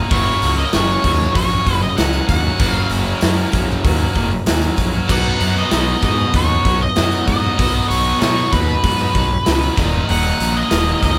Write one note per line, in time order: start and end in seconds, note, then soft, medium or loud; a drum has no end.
0.00 0.10 D#3 medium
0.00 0.11 F#3 medium
0.00 0.11 A#3 medium
0.10 0.32 F#1 medium
0.10 0.71 F#2 loud
0.10 0.71 C#3 loud
0.10 0.58 F#3 loud
0.10 0.58 A#3 loud
0.10 0.57 C#4 loud
0.10 0.56 F#4 loud
0.10 0.58 C#5 medium
0.10 kick loud
0.10 open hi-hat medium
0.42 0.64 C#2 medium
0.42 open hi-hat medium
0.42 tambourine medium
0.57 0.72 F#3 medium
0.57 0.73 A#3 medium
0.57 0.73 C#4 medium
0.57 0.73 F#4 medium
0.57 0.74 D#5 medium
0.57 tambourine soft
0.72 0.95 F#1 medium
0.72 1.96 F#2 medium
0.72 1.35 C#3 medium
0.72 1.04 F#3 loud
0.72 1.04 A#3 medium
0.72 1.05 C#4 loud
0.72 1.06 F#4 medium
0.72 1.34 C#5 medium
0.72 snare loud
0.72 open hi-hat medium
0.72 tambourine loud
0.89 tambourine soft
1.04 1.26 D#2 medium
1.04 1.20 F#3 medium
1.04 1.18 A#3 medium
1.04 1.18 C#4 medium
1.04 1.19 F#4 medium
1.04 kick medium
1.04 open hi-hat medium
1.19 muted distorted electric guitar stroke medium
1.19 snare soft
1.19 tambourine soft
1.35 1.57 A#1 loud
1.35 1.52 F#3 medium
1.35 1.50 A#3 medium
1.35 1.50 C#4 medium
1.35 1.50 F#4 medium
1.35 1.82 C#5 medium
1.35 kick loud
1.35 open hi-hat medium
1.50 1.65 F#3 medium
1.50 1.65 A#3 medium
1.50 1.66 C#4 medium
1.50 1.67 F#4 medium
1.66 1.88 F#1 medium
1.66 1.82 F#3 medium
1.66 1.80 A#3 medium
1.66 1.80 C#4 medium
1.66 1.81 F#4 medium
1.66 kick medium
1.66 open hi-hat medium
1.66 tambourine soft
1.81 1.97 D#5 medium
1.81 muted distorted electric guitar stroke medium
1.81 tambourine soft
1.96 2.19 C#2 medium
1.96 2.58 F#2 medium
1.96 2.58 C#3 medium
1.96 2.45 F#3 loud
1.96 2.44 A#3 medium
1.96 2.43 C#4 medium
1.96 2.43 F#4 loud
1.96 2.26 F#5 loud
1.96 snare loud
1.96 open hi-hat medium
1.96 tambourine loud
2.13 tambourine medium
2.28 2.50 D#2 medium
2.28 2.70 F#5 medium
2.28 kick medium
2.28 open hi-hat medium
2.28 tambourine medium
2.43 2.60 F#3 medium
2.43 2.59 A#3 medium
2.43 2.60 C#4 medium
2.43 2.61 F#4 medium
2.43 tambourine soft
2.59 2.81 F#1 medium
2.59 3.20 F#2 loud
2.59 3.20 C#3 loud
2.59 3.07 F#3 loud
2.59 3.06 A#3 loud
2.59 3.05 C#4 loud
2.59 3.05 F#4 loud
2.59 kick loud
2.59 open hi-hat medium
2.59 tambourine soft
2.70 2.87 F5 medium
2.74 tambourine soft
2.89 3.12 F#1 medium
2.89 open hi-hat medium
2.89 tambourine medium
3.05 3.22 F#3 medium
3.05 3.21 A#3 medium
3.05 3.21 C#4 medium
3.05 3.23 F#4 medium
3.05 tambourine soft
3.21 3.84 F#2 medium
3.21 3.44 F#2 medium
3.21 3.84 C#3 medium
3.21 3.53 F#3 medium
3.21 3.53 A#3 medium
3.21 3.53 C#4 medium
3.21 3.55 F#4 medium
3.21 snare loud
3.21 open hi-hat medium
3.21 tambourine loud
3.37 tambourine soft
3.52 3.75 A#1 medium
3.52 3.69 F#3 medium
3.52 3.68 A#3 medium
3.52 3.68 C#4 medium
3.52 3.68 F#4 medium
3.52 kick medium
3.52 open hi-hat medium
3.52 tambourine medium
3.68 muted distorted electric guitar stroke soft
3.68 snare soft
3.68 tambourine soft
3.84 4.06 D#2 medium
3.84 4.01 F#3 medium
3.84 3.99 A#3 medium
3.84 3.99 C#4 medium
3.84 3.99 F#4 medium
3.84 kick loud
3.84 open hi-hat medium
4.00 4.15 F#3 medium
4.00 4.15 A#3 medium
4.00 4.15 C#4 medium
4.00 4.16 F#4 medium
4.15 4.37 F#1 medium
4.15 4.31 F#3 medium
4.15 4.30 A#3 medium
4.15 4.30 C#4 medium
4.15 4.31 F#4 medium
4.15 kick medium
4.15 open hi-hat medium
4.31 muted distorted electric guitar stroke soft
4.31 tambourine soft
4.46 4.68 D#2 medium
4.46 5.07 F#2 medium
4.46 5.07 C#3 medium
4.46 4.95 F#3 medium
4.46 4.94 A#3 medium
4.46 4.93 C#4 loud
4.46 4.93 F#4 loud
4.46 snare loud
4.46 open hi-hat medium
4.46 tambourine loud
4.61 tambourine medium
4.77 4.99 A#1 medium
4.77 kick medium
4.77 open hi-hat medium
4.77 tambourine medium
4.93 5.10 F#3 soft
4.93 5.08 A#3 medium
4.93 5.08 C#4 medium
4.93 5.10 F#4 medium
4.93 tambourine soft
5.09 5.31 B1 medium
5.09 5.70 B2 medium
5.09 5.71 F#3 loud
5.09 5.57 B3 loud
5.09 5.57 D#4 loud
5.09 5.56 F#4 loud
5.09 5.58 F#5 loud
5.09 kick loud
5.09 crash loud
5.40 5.62 F#2 medium
5.40 open hi-hat medium
5.40 tambourine medium
5.56 5.71 B3 medium
5.56 5.72 D#4 medium
5.56 5.73 F#4 medium
5.56 6.03 D#5 medium
5.56 tambourine soft
5.71 5.93 B1 medium
5.71 6.33 B2 medium
5.71 6.02 F#3 medium
5.71 6.02 B3 medium
5.71 6.03 D#4 medium
5.71 6.04 F#4 loud
5.71 snare loud
5.71 open hi-hat medium
5.71 tambourine loud
5.88 tambourine soft
6.02 6.24 G#2 loud
6.02 6.19 F#3 medium
6.02 6.18 B3 medium
6.02 6.18 D#4 medium
6.02 6.18 F#4 medium
6.02 6.36 D#5 medium
6.02 kick medium
6.02 open hi-hat medium
6.02 tambourine medium
6.18 muted distorted electric guitar stroke soft
6.18 tambourine soft
6.34 6.55 D#2 medium
6.34 6.64 F#3 medium
6.34 6.50 B3 medium
6.34 6.50 D#4 medium
6.34 6.49 F#4 medium
6.34 6.82 C#5 medium
6.34 kick loud
6.34 open hi-hat medium
6.49 6.64 B3 medium
6.49 6.66 D#4 medium
6.49 6.66 F#4 medium
6.65 6.86 B1 medium
6.65 6.81 F#3 medium
6.65 6.81 B3 medium
6.65 6.81 D#4 medium
6.65 6.81 F#4 loud
6.65 kick medium
6.65 open hi-hat medium
6.65 tambourine soft
6.80 7.26 D#5 medium
6.80 muted distorted electric guitar stroke soft
6.80 tambourine soft
6.96 7.18 F#2 medium
6.96 7.58 B2 medium
6.96 7.60 F#3 medium
6.96 7.44 B3 medium
6.96 7.44 D#4 medium
6.96 7.43 F#4 loud
6.96 snare loud
6.96 open hi-hat medium
6.96 tambourine medium
7.11 tambourine medium
7.27 7.49 G#2 medium
7.27 7.88 D#5 medium
7.27 kick medium
7.27 open hi-hat medium
7.27 tambourine medium
7.43 7.60 B3 medium
7.43 7.61 D#4 medium
7.43 7.61 F#4 medium
7.43 tambourine soft
7.59 7.80 B1 medium
7.59 8.20 B2 medium
7.59 8.21 F#3 loud
7.59 8.06 B3 loud
7.59 8.06 D#4 loud
7.59 8.05 F#4 loud
7.59 kick loud
7.59 open hi-hat medium
7.88 8.11 B1 medium
7.88 8.18 C#5 medium
7.88 open hi-hat medium
7.88 tambourine medium
8.06 8.21 B3 medium
8.06 8.22 D#4 medium
8.06 8.22 F#4 medium
8.21 8.83 B2 medium
8.21 8.43 B2 medium
8.21 8.51 F#3 medium
8.21 8.51 B3 medium
8.21 8.53 D#4 medium
8.21 8.53 F#4 medium
8.21 8.50 C#5 medium
8.21 snare loud
8.21 open hi-hat medium
8.21 tambourine loud
8.37 tambourine soft
8.52 8.74 D#2 loud
8.52 8.68 F#3 medium
8.52 8.67 B3 medium
8.52 8.68 D#4 medium
8.52 8.67 F#4 medium
8.52 9.73 B4 medium
8.52 kick medium
8.52 open hi-hat medium
8.52 tambourine medium
8.68 muted distorted electric guitar stroke soft
8.68 tambourine soft
8.83 9.05 G#2 medium
8.83 9.14 F#3 medium
8.83 8.99 B3 medium
8.83 9.00 D#4 medium
8.83 8.98 F#4 medium
8.83 kick medium
8.83 open hi-hat medium
8.99 9.14 B3 medium
8.99 9.15 D#4 medium
8.99 9.16 F#4 medium
9.14 9.37 B1 medium
9.14 9.30 F#3 medium
9.14 9.29 B3 medium
9.14 9.30 D#4 medium
9.14 9.30 F#4 medium
9.14 kick medium
9.14 open hi-hat medium
9.14 tambourine soft
9.30 muted distorted electric guitar stroke medium
9.30 tambourine soft
9.45 9.68 C#2 medium
9.45 9.75 B2 medium
9.45 9.78 F#3 medium
9.45 9.76 B3 loud
9.45 9.78 D#4 loud
9.45 9.78 F#4 loud
9.45 snare loud
9.45 open hi-hat medium
9.45 tambourine medium
9.62 tambourine medium
9.77 9.99 D#1 medium
9.77 10.07 D#2 loud
9.77 10.07 A#2 medium
9.77 9.94 D#3 medium
9.77 9.93 F#3 loud
9.77 9.93 A#3 loud
9.77 9.92 D#4 loud
9.77 kick loud
9.77 open hi-hat medium
9.77 tambourine medium
9.92 10.08 D#3 medium
9.92 10.08 F#3 medium
9.92 10.09 A#3 medium
9.92 10.09 D#4 medium
9.92 tambourine soft
10.07 10.31 D#1 loud
10.07 10.70 D#2 loud
10.07 10.70 A#2 loud
10.07 10.56 D#3 loud
10.07 10.56 F#3 loud
10.07 10.55 A#3 loud
10.07 10.54 D#4 loud
10.07 10.58 F#5 loud
10.07 open hi-hat medium
10.40 10.62 A#1 medium
10.40 open hi-hat medium
10.40 tambourine medium
10.55 10.70 D#3 medium
10.55 10.71 F#3 medium
10.55 10.71 A#3 medium
10.55 10.72 D#4 medium
10.55 11.00 D#5 loud
10.55 tambourine soft
10.70 10.93 D#1 medium
10.70 11.19 D#2 medium
10.70 11.19 A#2 medium
10.70 11.01 D#3 medium
10.70 11.02 F#3 medium
10.70 11.03 A#3 medium
10.70 11.04 D#4 medium
10.70 snare loud
10.70 open hi-hat medium
10.70 tambourine loud
10.88 tambourine soft
11.02 11.19 C#2 loud
11.02 11.19 D#3 medium
11.02 11.19 F#3 medium
11.02 11.18 A#3 medium
11.02 11.18 D#4 medium
11.02 11.19 D#5 medium
11.02 kick medium
11.02 open hi-hat medium
11.02 tambourine medium